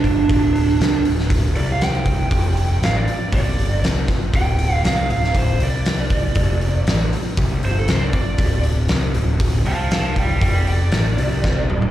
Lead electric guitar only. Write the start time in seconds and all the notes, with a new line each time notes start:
0.05 D4
1.57 D5
1.72 F5
1.84 G5
2.84 F5
2.96 D5
3.35 D5
4.36 G5
4.72 F5
4.85 F5
5.11 F5
5.37 C5
5.64 D5
7.65 C5
7.79 A4
7.90 C5
8.03 D5
8.15 D5
9.67 F5 A5
9.92 F5 A5
10.19 D5 G5
10.42 D5 G5
10.69 D5